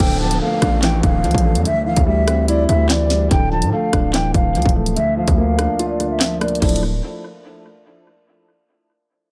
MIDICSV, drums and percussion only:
0, 0, Header, 1, 2, 480
1, 0, Start_track
1, 0, Time_signature, 4, 2, 24, 8
1, 0, Key_signature, -1, "minor"
1, 0, Tempo, 413793
1, 10803, End_track
2, 0, Start_track
2, 0, Title_t, "Drums"
2, 0, Note_on_c, 9, 42, 76
2, 0, Note_on_c, 9, 49, 98
2, 116, Note_off_c, 9, 42, 0
2, 116, Note_off_c, 9, 49, 0
2, 359, Note_on_c, 9, 42, 80
2, 475, Note_off_c, 9, 42, 0
2, 719, Note_on_c, 9, 37, 98
2, 719, Note_on_c, 9, 42, 80
2, 720, Note_on_c, 9, 36, 100
2, 835, Note_off_c, 9, 37, 0
2, 835, Note_off_c, 9, 42, 0
2, 836, Note_off_c, 9, 36, 0
2, 953, Note_on_c, 9, 39, 93
2, 959, Note_on_c, 9, 38, 116
2, 960, Note_on_c, 9, 42, 78
2, 1069, Note_off_c, 9, 39, 0
2, 1075, Note_off_c, 9, 38, 0
2, 1076, Note_off_c, 9, 42, 0
2, 1199, Note_on_c, 9, 36, 96
2, 1199, Note_on_c, 9, 42, 86
2, 1315, Note_off_c, 9, 36, 0
2, 1315, Note_off_c, 9, 42, 0
2, 1439, Note_on_c, 9, 42, 49
2, 1519, Note_off_c, 9, 42, 0
2, 1519, Note_on_c, 9, 42, 63
2, 1560, Note_on_c, 9, 36, 99
2, 1600, Note_off_c, 9, 42, 0
2, 1600, Note_on_c, 9, 42, 81
2, 1676, Note_off_c, 9, 36, 0
2, 1716, Note_off_c, 9, 42, 0
2, 1802, Note_on_c, 9, 42, 81
2, 1918, Note_off_c, 9, 42, 0
2, 1919, Note_on_c, 9, 42, 77
2, 2035, Note_off_c, 9, 42, 0
2, 2279, Note_on_c, 9, 42, 78
2, 2280, Note_on_c, 9, 36, 95
2, 2395, Note_off_c, 9, 42, 0
2, 2396, Note_off_c, 9, 36, 0
2, 2640, Note_on_c, 9, 37, 98
2, 2640, Note_on_c, 9, 42, 82
2, 2756, Note_off_c, 9, 37, 0
2, 2756, Note_off_c, 9, 42, 0
2, 2881, Note_on_c, 9, 42, 78
2, 2997, Note_off_c, 9, 42, 0
2, 3120, Note_on_c, 9, 42, 85
2, 3236, Note_off_c, 9, 42, 0
2, 3354, Note_on_c, 9, 39, 100
2, 3361, Note_on_c, 9, 38, 122
2, 3470, Note_off_c, 9, 39, 0
2, 3477, Note_off_c, 9, 38, 0
2, 3598, Note_on_c, 9, 42, 72
2, 3599, Note_on_c, 9, 38, 73
2, 3714, Note_off_c, 9, 42, 0
2, 3715, Note_off_c, 9, 38, 0
2, 3839, Note_on_c, 9, 42, 77
2, 3840, Note_on_c, 9, 36, 114
2, 3955, Note_off_c, 9, 42, 0
2, 3956, Note_off_c, 9, 36, 0
2, 4198, Note_on_c, 9, 42, 80
2, 4314, Note_off_c, 9, 42, 0
2, 4560, Note_on_c, 9, 37, 105
2, 4560, Note_on_c, 9, 42, 77
2, 4561, Note_on_c, 9, 36, 97
2, 4676, Note_off_c, 9, 37, 0
2, 4676, Note_off_c, 9, 42, 0
2, 4677, Note_off_c, 9, 36, 0
2, 4794, Note_on_c, 9, 39, 94
2, 4801, Note_on_c, 9, 38, 115
2, 4801, Note_on_c, 9, 42, 81
2, 4910, Note_off_c, 9, 39, 0
2, 4917, Note_off_c, 9, 38, 0
2, 4917, Note_off_c, 9, 42, 0
2, 5039, Note_on_c, 9, 36, 96
2, 5039, Note_on_c, 9, 42, 85
2, 5155, Note_off_c, 9, 36, 0
2, 5155, Note_off_c, 9, 42, 0
2, 5280, Note_on_c, 9, 42, 50
2, 5360, Note_off_c, 9, 42, 0
2, 5360, Note_on_c, 9, 42, 65
2, 5400, Note_on_c, 9, 36, 104
2, 5439, Note_off_c, 9, 42, 0
2, 5439, Note_on_c, 9, 42, 82
2, 5516, Note_off_c, 9, 36, 0
2, 5555, Note_off_c, 9, 42, 0
2, 5641, Note_on_c, 9, 42, 80
2, 5757, Note_off_c, 9, 42, 0
2, 5759, Note_on_c, 9, 42, 75
2, 5875, Note_off_c, 9, 42, 0
2, 6119, Note_on_c, 9, 42, 80
2, 6121, Note_on_c, 9, 36, 98
2, 6235, Note_off_c, 9, 42, 0
2, 6237, Note_off_c, 9, 36, 0
2, 6480, Note_on_c, 9, 37, 104
2, 6480, Note_on_c, 9, 42, 77
2, 6596, Note_off_c, 9, 37, 0
2, 6596, Note_off_c, 9, 42, 0
2, 6721, Note_on_c, 9, 42, 82
2, 6837, Note_off_c, 9, 42, 0
2, 6960, Note_on_c, 9, 42, 87
2, 7076, Note_off_c, 9, 42, 0
2, 7194, Note_on_c, 9, 39, 104
2, 7200, Note_on_c, 9, 38, 127
2, 7310, Note_off_c, 9, 39, 0
2, 7316, Note_off_c, 9, 38, 0
2, 7438, Note_on_c, 9, 46, 58
2, 7440, Note_on_c, 9, 37, 103
2, 7440, Note_on_c, 9, 42, 45
2, 7520, Note_off_c, 9, 42, 0
2, 7520, Note_on_c, 9, 42, 50
2, 7554, Note_off_c, 9, 46, 0
2, 7556, Note_off_c, 9, 37, 0
2, 7600, Note_off_c, 9, 42, 0
2, 7600, Note_on_c, 9, 42, 56
2, 7680, Note_off_c, 9, 42, 0
2, 7680, Note_on_c, 9, 36, 106
2, 7680, Note_on_c, 9, 42, 62
2, 7680, Note_on_c, 9, 49, 88
2, 7760, Note_off_c, 9, 42, 0
2, 7760, Note_on_c, 9, 42, 69
2, 7796, Note_off_c, 9, 36, 0
2, 7796, Note_off_c, 9, 49, 0
2, 7839, Note_off_c, 9, 42, 0
2, 7839, Note_on_c, 9, 42, 77
2, 7955, Note_off_c, 9, 42, 0
2, 10803, End_track
0, 0, End_of_file